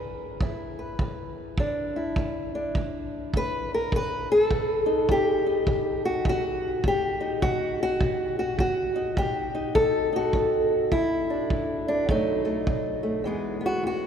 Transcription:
0.00 0.37 E2 medium
0.00 0.78 B4 medium
0.41 0.96 E2 medium
0.41 1.56 E4 medium
0.41 kick medium
0.79 3.36 B4 soft
0.99 1.55 E2 medium
0.99 kick medium
1.58 2.13 E2 medium
1.58 2.53 D4 soft
1.58 kick medium
1.96 3.91 E4 soft
2.16 2.72 E2 medium
2.16 kick medium
2.55 3.91 D4 soft
2.75 3.30 E2 medium
2.75 kick medium
3.34 3.89 E2 medium
3.34 3.71 B4 loud
3.34 kick medium
3.74 3.95 A#4 medium
3.92 4.46 B2 medium
3.92 4.30 B4 loud
3.92 kick medium
4.32 4.43 G#4 loud
4.43 5.26 A4 loud
4.50 5.05 B2 medium
4.50 kick medium
4.86 5.46 D#4 soft
5.08 5.63 B2 medium
5.08 6.04 G4 loud
5.08 kick medium
5.26 5.70 G#4 loud
5.46 7.20 D#4 soft
5.67 6.22 B2 medium
5.67 kick medium
6.05 6.27 F#4 medium
6.25 6.80 B2 medium
6.25 kick medium
6.29 6.86 F#4 medium
6.84 7.39 B2 medium
6.84 7.42 G4 medium
6.84 kick medium
7.21 8.57 D#4 soft
7.42 7.97 B2 medium
7.42 7.81 F#4 medium
7.42 kick medium
7.83 8.38 F#4 loud
8.01 8.55 B2 medium
8.01 kick medium
8.39 8.59 F#4 medium
8.59 9.13 B2 medium
8.59 9.18 F#4 medium
8.59 kick medium
8.96 9.54 D#4 soft
9.17 9.72 B2 medium
9.17 9.76 G4 loud
9.17 kick medium
9.55 10.11 D#4 soft
9.75 10.30 B2 medium
9.75 10.73 A4 loud
9.75 kick medium
10.13 10.90 D#4 soft
10.13 10.93 F#4 loud
10.33 10.88 B2 medium
10.33 kick medium
10.92 11.46 E2 medium
10.92 12.09 E4 medium
10.92 kick medium
11.30 11.87 D4 soft
11.50 12.05 E2 medium
11.50 kick medium
11.88 12.10 D4 medium
12.09 12.63 B2 medium
12.09 13.23 F#3 medium
12.09 12.44 A3 soft
12.09 13.26 D#4 medium
12.09 kick medium
12.45 13.02 A3 soft
12.67 13.21 B2 medium
12.67 kick medium
13.03 13.23 A3 soft
13.24 13.78 E2 medium
13.24 14.07 E3 soft
13.24 14.07 G#3 soft
13.24 13.60 B3 soft
13.24 13.65 G#4 soft
13.61 14.07 B3 soft
13.66 13.85 F#4 medium
13.83 14.07 E2 medium
13.83 14.07 F#4 medium

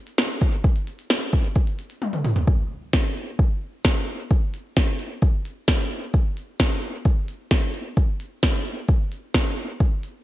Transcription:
0.07 closed hi-hat medium
0.18 snare loud
0.18 closed hi-hat medium
0.30 closed hi-hat medium
0.41 kick medium
0.41 closed hi-hat medium
0.53 closed hi-hat medium
0.64 kick loud
0.64 closed hi-hat medium
0.76 closed hi-hat medium
0.87 closed hi-hat medium
0.99 closed hi-hat medium
1.10 snare loud
1.10 closed hi-hat medium
1.22 closed hi-hat medium
1.33 kick loud
1.33 closed hi-hat medium
1.45 closed hi-hat medium
1.56 kick medium
1.56 closed hi-hat medium
1.67 closed hi-hat medium
1.79 closed hi-hat medium
1.90 closed hi-hat medium
2.02 closed hi-hat medium
2.02 high tom medium
2.13 closed hi-hat medium
2.13 mid tom medium
2.25 mid tom loud
2.25 open hi-hat medium
2.36 closed hi-hat medium
2.36 floor tom loud
2.47 kick loud
2.93 kick loud
2.93 snare loud
3.39 kick loud
3.85 kick loud
3.85 snare loud
4.31 kick loud
4.31 closed hi-hat medium
4.54 closed hi-hat medium
4.77 kick loud
4.77 snare loud
4.77 closed hi-hat medium
4.99 closed hi-hat medium
5.22 kick loud
5.22 closed hi-hat medium
5.45 closed hi-hat medium
5.68 kick loud
5.68 snare loud
5.68 closed hi-hat medium
5.91 closed hi-hat medium
6.14 kick loud
6.14 closed hi-hat medium
6.37 closed hi-hat medium
6.60 kick loud
6.60 snare loud
6.60 closed hi-hat medium
6.82 closed hi-hat medium
7.05 kick loud
7.05 closed hi-hat medium
7.28 closed hi-hat medium
7.51 kick loud
7.51 snare loud
7.51 closed hi-hat medium
7.74 closed hi-hat medium
7.97 kick loud
7.97 closed hi-hat medium
8.20 closed hi-hat medium
8.43 kick loud
8.43 snare loud
8.43 closed hi-hat medium
8.66 closed hi-hat medium
8.88 kick loud
8.88 closed hi-hat medium
9.12 closed hi-hat medium
9.34 kick loud
9.34 snare loud
9.34 closed hi-hat medium
9.58 open hi-hat medium
9.80 kick loud
9.80 closed hi-hat medium
10.03 closed hi-hat medium

